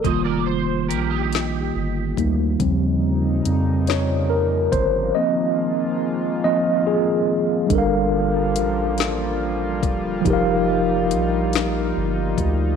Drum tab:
HH |x-xx-x|x-xx-x|------|x-xx-x|
SD |---o--|---o--|------|---o--|
BD |o----o|o----o|------|o----o|

HH |x-xx-x|
SD |---o--|
BD |o----o|